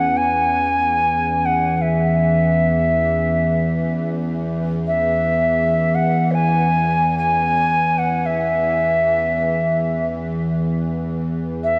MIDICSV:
0, 0, Header, 1, 4, 480
1, 0, Start_track
1, 0, Key_signature, 4, "major"
1, 0, Tempo, 500000
1, 11321, End_track
2, 0, Start_track
2, 0, Title_t, "Native American-style wooden flute"
2, 0, Program_c, 0, 77
2, 0, Note_on_c, 0, 78, 68
2, 164, Note_on_c, 0, 80, 85
2, 178, Note_off_c, 0, 78, 0
2, 1397, Note_on_c, 0, 78, 69
2, 1411, Note_off_c, 0, 80, 0
2, 1703, Note_off_c, 0, 78, 0
2, 1703, Note_on_c, 0, 78, 45
2, 1743, Note_on_c, 0, 76, 65
2, 1757, Note_off_c, 0, 78, 0
2, 3909, Note_off_c, 0, 76, 0
2, 4678, Note_on_c, 0, 76, 68
2, 5711, Note_on_c, 0, 78, 72
2, 5725, Note_off_c, 0, 76, 0
2, 6058, Note_on_c, 0, 71, 60
2, 6073, Note_off_c, 0, 78, 0
2, 6079, Note_on_c, 0, 80, 86
2, 6093, Note_off_c, 0, 71, 0
2, 6887, Note_off_c, 0, 80, 0
2, 6893, Note_on_c, 0, 80, 80
2, 7664, Note_on_c, 0, 78, 67
2, 7678, Note_off_c, 0, 80, 0
2, 7929, Note_on_c, 0, 76, 66
2, 7943, Note_off_c, 0, 78, 0
2, 9650, Note_off_c, 0, 76, 0
2, 11172, Note_on_c, 0, 76, 68
2, 11321, Note_off_c, 0, 76, 0
2, 11321, End_track
3, 0, Start_track
3, 0, Title_t, "Singing bowl"
3, 0, Program_c, 1, 14
3, 0, Note_on_c, 1, 61, 47
3, 3838, Note_off_c, 1, 61, 0
3, 11321, End_track
4, 0, Start_track
4, 0, Title_t, "Ambient pad"
4, 0, Program_c, 2, 92
4, 0, Note_on_c, 2, 40, 59
4, 0, Note_on_c, 2, 52, 62
4, 11321, Note_off_c, 2, 40, 0
4, 11321, Note_off_c, 2, 52, 0
4, 11321, End_track
0, 0, End_of_file